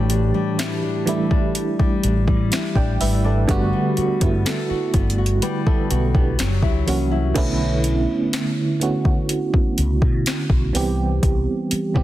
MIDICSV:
0, 0, Header, 1, 6, 480
1, 0, Start_track
1, 0, Key_signature, 2, "minor"
1, 0, Tempo, 967742
1, 1729, Time_signature, 4, 2, 24, 8
1, 5969, End_track
2, 0, Start_track
2, 0, Title_t, "Nylon-string guitar"
2, 0, Program_c, 0, 24
2, 0, Note_on_c, 0, 45, 89
2, 0, Note_on_c, 0, 55, 65
2, 50, Note_on_c, 0, 62, 58
2, 168, Note_off_c, 0, 55, 0
2, 170, Note_on_c, 0, 55, 61
2, 290, Note_on_c, 0, 64, 75
2, 407, Note_off_c, 0, 62, 0
2, 409, Note_on_c, 0, 62, 66
2, 527, Note_off_c, 0, 55, 0
2, 529, Note_on_c, 0, 55, 64
2, 648, Note_off_c, 0, 62, 0
2, 650, Note_on_c, 0, 62, 58
2, 769, Note_off_c, 0, 45, 0
2, 887, Note_off_c, 0, 55, 0
2, 889, Note_on_c, 0, 55, 63
2, 1007, Note_off_c, 0, 62, 0
2, 1009, Note_on_c, 0, 62, 60
2, 1127, Note_off_c, 0, 55, 0
2, 1129, Note_on_c, 0, 55, 64
2, 1243, Note_off_c, 0, 64, 0
2, 1249, Note_on_c, 0, 64, 68
2, 1368, Note_off_c, 0, 62, 0
2, 1370, Note_on_c, 0, 62, 64
2, 1488, Note_off_c, 0, 55, 0
2, 1490, Note_on_c, 0, 55, 66
2, 1607, Note_off_c, 0, 62, 0
2, 1609, Note_on_c, 0, 62, 64
2, 1727, Note_off_c, 0, 55, 0
2, 1729, Note_on_c, 0, 55, 92
2, 1777, Note_off_c, 0, 64, 0
2, 1848, Note_off_c, 0, 62, 0
2, 1850, Note_on_c, 0, 59, 63
2, 1970, Note_on_c, 0, 66, 60
2, 2084, Note_off_c, 0, 59, 0
2, 2090, Note_on_c, 0, 59, 62
2, 2210, Note_on_c, 0, 69, 72
2, 2327, Note_off_c, 0, 66, 0
2, 2329, Note_on_c, 0, 66, 67
2, 2443, Note_off_c, 0, 59, 0
2, 2449, Note_on_c, 0, 59, 60
2, 2568, Note_off_c, 0, 66, 0
2, 2570, Note_on_c, 0, 66, 58
2, 2683, Note_off_c, 0, 55, 0
2, 2689, Note_on_c, 0, 55, 86
2, 2804, Note_off_c, 0, 59, 0
2, 2810, Note_on_c, 0, 59, 69
2, 2928, Note_off_c, 0, 66, 0
2, 2930, Note_on_c, 0, 66, 60
2, 3043, Note_off_c, 0, 59, 0
2, 3049, Note_on_c, 0, 59, 61
2, 3167, Note_off_c, 0, 55, 0
2, 3169, Note_on_c, 0, 54, 78
2, 3217, Note_off_c, 0, 59, 0
2, 3217, Note_off_c, 0, 69, 0
2, 3287, Note_off_c, 0, 66, 0
2, 3289, Note_on_c, 0, 64, 64
2, 3410, Note_on_c, 0, 61, 63
2, 3527, Note_off_c, 0, 64, 0
2, 3528, Note_on_c, 0, 64, 64
2, 3945, Note_off_c, 0, 54, 0
2, 3945, Note_off_c, 0, 61, 0
2, 3945, Note_off_c, 0, 64, 0
2, 5969, End_track
3, 0, Start_track
3, 0, Title_t, "FM electric piano"
3, 0, Program_c, 1, 5
3, 0, Control_c, 1, 64, 127
3, 0, Note_on_c, 1, 52, 101
3, 0, Note_on_c, 1, 55, 87
3, 0, Note_on_c, 1, 57, 87
3, 0, Note_on_c, 1, 62, 91
3, 0, Note_on_c, 1, 66, 56
3, 0, Note_on_c, 1, 67, 112
3, 0, Note_on_c, 1, 71, 68
3, 0, Note_on_c, 1, 81, 76
3, 335, Note_off_c, 1, 52, 0
3, 336, Note_off_c, 1, 55, 0
3, 338, Note_off_c, 1, 57, 0
3, 340, Note_off_c, 1, 62, 0
3, 342, Note_off_c, 1, 67, 0
3, 524, Note_on_c, 1, 52, 98
3, 528, Note_on_c, 1, 55, 86
3, 532, Note_on_c, 1, 57, 83
3, 536, Note_on_c, 1, 62, 82
3, 539, Note_on_c, 1, 64, 99
3, 1106, Note_off_c, 1, 52, 0
3, 1108, Note_off_c, 1, 55, 0
3, 1110, Note_off_c, 1, 57, 0
3, 1112, Note_off_c, 1, 62, 0
3, 1114, Note_off_c, 1, 64, 0
3, 1372, Note_on_c, 1, 79, 72
3, 1375, Note_on_c, 1, 74, 62
3, 1484, Note_off_c, 1, 79, 0
3, 1486, Note_off_c, 1, 74, 0
3, 1493, Note_on_c, 1, 76, 73
3, 1496, Note_off_c, 1, 71, 0
3, 1496, Note_on_c, 1, 71, 63
3, 1605, Note_off_c, 1, 76, 0
3, 1607, Note_off_c, 1, 71, 0
3, 1613, Note_on_c, 1, 74, 65
3, 1616, Note_on_c, 1, 69, 60
3, 1724, Note_on_c, 1, 50, 120
3, 1728, Note_on_c, 1, 55, 109
3, 1732, Note_on_c, 1, 57, 108
3, 1736, Control_c, 1, 64, 0
3, 1736, Note_on_c, 1, 59, 107
3, 1739, Note_off_c, 1, 66, 0
3, 1739, Note_on_c, 1, 66, 127
3, 1740, Note_off_c, 1, 81, 0
3, 1820, Control_c, 1, 64, 127
3, 1839, Note_off_c, 1, 74, 0
3, 1841, Note_off_c, 1, 69, 0
3, 1944, Note_off_c, 1, 50, 0
3, 1946, Note_off_c, 1, 55, 0
3, 1948, Note_off_c, 1, 57, 0
3, 1950, Note_off_c, 1, 59, 0
3, 1952, Note_off_c, 1, 66, 0
3, 2085, Note_on_c, 1, 50, 84
3, 2088, Note_on_c, 1, 55, 73
3, 2092, Note_on_c, 1, 57, 73
3, 2096, Note_on_c, 1, 59, 77
3, 2100, Note_on_c, 1, 64, 86
3, 2304, Note_off_c, 1, 50, 0
3, 2306, Note_off_c, 1, 55, 0
3, 2308, Note_off_c, 1, 57, 0
3, 2310, Note_off_c, 1, 59, 0
3, 2312, Note_off_c, 1, 64, 0
3, 2692, Note_on_c, 1, 71, 64
3, 2694, Note_on_c, 1, 66, 55
3, 2804, Note_off_c, 1, 71, 0
3, 2806, Note_off_c, 1, 66, 0
3, 2811, Note_on_c, 1, 69, 76
3, 2814, Note_on_c, 1, 64, 65
3, 2924, Note_off_c, 1, 69, 0
3, 2926, Note_off_c, 1, 64, 0
3, 2931, Note_on_c, 1, 66, 72
3, 2934, Note_on_c, 1, 59, 62
3, 3044, Note_off_c, 1, 66, 0
3, 3046, Note_off_c, 1, 59, 0
3, 3051, Note_on_c, 1, 67, 64
3, 3054, Note_on_c, 1, 62, 52
3, 3176, Control_c, 1, 64, 0
3, 3269, Control_c, 1, 64, 127
3, 3278, Note_off_c, 1, 67, 0
3, 3280, Note_off_c, 1, 62, 0
3, 3404, Note_on_c, 1, 52, 83
3, 3407, Note_on_c, 1, 54, 77
3, 3411, Note_on_c, 1, 58, 76
3, 3415, Note_on_c, 1, 61, 81
3, 3419, Note_on_c, 1, 66, 94
3, 3551, Note_off_c, 1, 52, 0
3, 3553, Note_off_c, 1, 54, 0
3, 3555, Note_off_c, 1, 58, 0
3, 3557, Note_off_c, 1, 61, 0
3, 3559, Note_off_c, 1, 66, 0
3, 3643, Note_on_c, 1, 50, 114
3, 3647, Note_on_c, 1, 57, 97
3, 3651, Note_on_c, 1, 59, 108
3, 3655, Note_on_c, 1, 61, 104
3, 3656, Control_c, 1, 64, 0
3, 3658, Note_on_c, 1, 64, 123
3, 3732, Control_c, 1, 64, 127
3, 4081, Note_off_c, 1, 50, 0
3, 4083, Note_off_c, 1, 57, 0
3, 4085, Note_off_c, 1, 59, 0
3, 4087, Note_off_c, 1, 61, 0
3, 4088, Note_off_c, 1, 64, 0
3, 4364, Note_on_c, 1, 50, 89
3, 4369, Note_on_c, 1, 57, 79
3, 4372, Note_on_c, 1, 59, 78
3, 4376, Note_on_c, 1, 61, 78
3, 4379, Note_on_c, 1, 66, 93
3, 4946, Note_off_c, 1, 50, 0
3, 4948, Note_off_c, 1, 57, 0
3, 4950, Note_off_c, 1, 59, 0
3, 4952, Note_off_c, 1, 61, 0
3, 4954, Note_off_c, 1, 66, 0
3, 5323, Note_on_c, 1, 52, 92
3, 5327, Note_on_c, 1, 55, 85
3, 5331, Note_on_c, 1, 59, 87
3, 5335, Note_on_c, 1, 60, 85
3, 5336, Control_c, 1, 64, 0
3, 5338, Note_on_c, 1, 67, 102
3, 5412, Control_c, 1, 64, 127
3, 5806, Note_off_c, 1, 52, 0
3, 5808, Note_off_c, 1, 55, 0
3, 5810, Note_off_c, 1, 59, 0
3, 5812, Note_off_c, 1, 60, 0
3, 5814, Note_off_c, 1, 67, 0
3, 5924, Note_on_c, 1, 52, 74
3, 5927, Note_on_c, 1, 55, 76
3, 5931, Note_on_c, 1, 59, 72
3, 5935, Note_on_c, 1, 60, 73
3, 5938, Note_on_c, 1, 67, 84
3, 5969, Note_off_c, 1, 52, 0
3, 5969, Note_off_c, 1, 55, 0
3, 5969, Note_off_c, 1, 59, 0
3, 5969, Note_off_c, 1, 60, 0
3, 5969, Note_off_c, 1, 67, 0
3, 5969, End_track
4, 0, Start_track
4, 0, Title_t, "Fretless electric bass"
4, 0, Program_c, 2, 35
4, 0, Note_on_c, 2, 33, 96
4, 150, Note_off_c, 2, 33, 0
4, 1010, Note_on_c, 2, 33, 89
4, 1118, Note_off_c, 2, 33, 0
4, 1130, Note_on_c, 2, 45, 94
4, 1238, Note_off_c, 2, 45, 0
4, 1366, Note_on_c, 2, 33, 91
4, 1476, Note_off_c, 2, 33, 0
4, 1491, Note_on_c, 2, 32, 90
4, 1710, Note_off_c, 2, 32, 0
4, 2091, Note_on_c, 2, 43, 104
4, 2198, Note_off_c, 2, 43, 0
4, 2451, Note_on_c, 2, 31, 94
4, 2670, Note_off_c, 2, 31, 0
4, 2930, Note_on_c, 2, 35, 86
4, 3149, Note_off_c, 2, 35, 0
4, 3170, Note_on_c, 2, 30, 101
4, 3278, Note_off_c, 2, 30, 0
4, 3287, Note_on_c, 2, 37, 91
4, 3396, Note_off_c, 2, 37, 0
4, 3410, Note_on_c, 2, 36, 96
4, 3630, Note_off_c, 2, 36, 0
4, 4850, Note_on_c, 2, 37, 85
4, 4958, Note_off_c, 2, 37, 0
4, 4970, Note_on_c, 2, 47, 92
4, 5078, Note_off_c, 2, 47, 0
4, 5207, Note_on_c, 2, 35, 97
4, 5316, Note_off_c, 2, 35, 0
4, 5330, Note_on_c, 2, 36, 100
4, 5550, Note_off_c, 2, 36, 0
4, 5570, Note_on_c, 2, 36, 104
4, 5678, Note_off_c, 2, 36, 0
4, 5931, Note_on_c, 2, 48, 100
4, 5969, Note_off_c, 2, 48, 0
4, 5969, End_track
5, 0, Start_track
5, 0, Title_t, "Muted fretless electric bass strokes"
5, 1971, Note_on_c, 9, 29, 46
5, 2020, Note_off_c, 9, 29, 0
5, 2331, Note_on_c, 9, 29, 52
5, 2380, Note_off_c, 9, 29, 0
5, 2811, Note_on_c, 9, 29, 49
5, 2860, Note_off_c, 9, 29, 0
5, 5811, Note_on_c, 9, 29, 48
5, 5861, Note_off_c, 9, 29, 0
5, 5969, End_track
6, 0, Start_track
6, 0, Title_t, "Drums"
6, 48, Note_on_c, 9, 42, 70
6, 98, Note_off_c, 9, 42, 0
6, 293, Note_on_c, 9, 42, 78
6, 295, Note_on_c, 9, 38, 122
6, 342, Note_off_c, 9, 42, 0
6, 344, Note_off_c, 9, 38, 0
6, 532, Note_on_c, 9, 42, 64
6, 582, Note_off_c, 9, 42, 0
6, 649, Note_on_c, 9, 36, 93
6, 699, Note_off_c, 9, 36, 0
6, 769, Note_on_c, 9, 42, 82
6, 818, Note_off_c, 9, 42, 0
6, 890, Note_on_c, 9, 36, 106
6, 940, Note_off_c, 9, 36, 0
6, 1009, Note_on_c, 9, 42, 74
6, 1059, Note_off_c, 9, 42, 0
6, 1129, Note_on_c, 9, 36, 93
6, 1179, Note_off_c, 9, 36, 0
6, 1249, Note_on_c, 9, 42, 85
6, 1254, Note_on_c, 9, 38, 120
6, 1298, Note_off_c, 9, 42, 0
6, 1304, Note_off_c, 9, 38, 0
6, 1366, Note_on_c, 9, 36, 94
6, 1416, Note_off_c, 9, 36, 0
6, 1491, Note_on_c, 9, 46, 76
6, 1541, Note_off_c, 9, 46, 0
6, 1729, Note_on_c, 9, 36, 117
6, 1730, Note_on_c, 9, 42, 76
6, 1779, Note_off_c, 9, 36, 0
6, 1779, Note_off_c, 9, 42, 0
6, 1969, Note_on_c, 9, 42, 44
6, 2019, Note_off_c, 9, 42, 0
6, 2089, Note_on_c, 9, 42, 74
6, 2090, Note_on_c, 9, 36, 93
6, 2139, Note_off_c, 9, 42, 0
6, 2140, Note_off_c, 9, 36, 0
6, 2212, Note_on_c, 9, 42, 83
6, 2215, Note_on_c, 9, 38, 124
6, 2262, Note_off_c, 9, 42, 0
6, 2264, Note_off_c, 9, 38, 0
6, 2449, Note_on_c, 9, 42, 55
6, 2450, Note_on_c, 9, 36, 93
6, 2498, Note_off_c, 9, 42, 0
6, 2500, Note_off_c, 9, 36, 0
6, 2529, Note_on_c, 9, 42, 55
6, 2579, Note_off_c, 9, 42, 0
6, 2609, Note_on_c, 9, 42, 53
6, 2659, Note_off_c, 9, 42, 0
6, 2689, Note_on_c, 9, 42, 76
6, 2739, Note_off_c, 9, 42, 0
6, 2810, Note_on_c, 9, 36, 107
6, 2860, Note_off_c, 9, 36, 0
6, 2929, Note_on_c, 9, 42, 75
6, 2979, Note_off_c, 9, 42, 0
6, 3049, Note_on_c, 9, 36, 100
6, 3098, Note_off_c, 9, 36, 0
6, 3169, Note_on_c, 9, 42, 83
6, 3174, Note_on_c, 9, 38, 112
6, 3218, Note_off_c, 9, 42, 0
6, 3224, Note_off_c, 9, 38, 0
6, 3286, Note_on_c, 9, 36, 89
6, 3335, Note_off_c, 9, 36, 0
6, 3410, Note_on_c, 9, 46, 74
6, 3460, Note_off_c, 9, 46, 0
6, 3648, Note_on_c, 9, 49, 107
6, 3649, Note_on_c, 9, 36, 119
6, 3649, Note_on_c, 9, 42, 75
6, 3698, Note_off_c, 9, 36, 0
6, 3698, Note_off_c, 9, 49, 0
6, 3699, Note_off_c, 9, 42, 0
6, 3888, Note_on_c, 9, 42, 73
6, 3938, Note_off_c, 9, 42, 0
6, 4132, Note_on_c, 9, 42, 76
6, 4135, Note_on_c, 9, 38, 126
6, 4182, Note_off_c, 9, 42, 0
6, 4184, Note_off_c, 9, 38, 0
6, 4372, Note_on_c, 9, 42, 66
6, 4421, Note_off_c, 9, 42, 0
6, 4489, Note_on_c, 9, 36, 98
6, 4539, Note_off_c, 9, 36, 0
6, 4608, Note_on_c, 9, 42, 81
6, 4658, Note_off_c, 9, 42, 0
6, 4731, Note_on_c, 9, 36, 104
6, 4780, Note_off_c, 9, 36, 0
6, 4850, Note_on_c, 9, 42, 81
6, 4899, Note_off_c, 9, 42, 0
6, 4969, Note_on_c, 9, 36, 99
6, 5019, Note_off_c, 9, 36, 0
6, 5089, Note_on_c, 9, 42, 86
6, 5095, Note_on_c, 9, 38, 115
6, 5139, Note_off_c, 9, 42, 0
6, 5144, Note_off_c, 9, 38, 0
6, 5206, Note_on_c, 9, 36, 92
6, 5256, Note_off_c, 9, 36, 0
6, 5331, Note_on_c, 9, 46, 75
6, 5381, Note_off_c, 9, 46, 0
6, 5569, Note_on_c, 9, 36, 116
6, 5570, Note_on_c, 9, 42, 77
6, 5619, Note_off_c, 9, 36, 0
6, 5619, Note_off_c, 9, 42, 0
6, 5808, Note_on_c, 9, 42, 74
6, 5858, Note_off_c, 9, 42, 0
6, 5931, Note_on_c, 9, 36, 91
6, 5969, Note_off_c, 9, 36, 0
6, 5969, End_track
0, 0, End_of_file